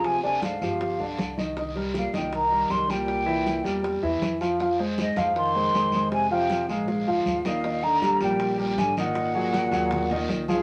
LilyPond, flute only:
\new Staff \with { instrumentName = "Flute" } { \time 4/4 \key f \minor \tempo 4 = 158 aes''8 aes''8 f''2~ f''8 r8 | r4 f''8 g''8 bes''4 c'''8 g''8~ | g''2~ g''8 r4. | r4 ees''8 f''8 c'''2 |
aes''8 g''4 f''2 f''8~ | f''8 bes''4 g''4 g''8 aes''8 ges''8~ | ges''2.~ ges''8 f''8 | }